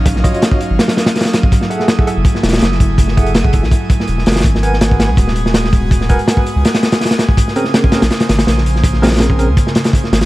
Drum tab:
HH |x---x-x-x---x---x-x-x-x-xxx-x---|x---x---x---x---x---xxxxx---x---|x---x-x-x---x---x---x---x---xxxx|x---x---x---x---x---x---x---x---|
SD |--o-----o-------o-o-o-o-ooo-o---|--o---o-o---------o-ooooo-o-----|--o-----o-----o-------o---o-oooo|--o---o-o---o-----o---o-o-o-----|
BD |o---o-----o-------------------o-|o---------o-----o-----------o---|o---o-----o-o---o---o-----------|o---------o-----o-----------o---|

HH |x---x-x-x---x---x-x-x-x-xxx-x---|x---x---x---x-x-x-x-x-x-x---x---|x---xxxxx---x---x---x-x-x---x-x-|
SD |--o-----o-------o-o-o-o-ooo-o---|--o---o-o---o-o-o-o-o-o-o-o---o-|--o-ooooo---------o-o-o---o-o-o-|
BD |o---o-----o-------------------o-|o---------o---------------------|o---------o-----o-------o-------|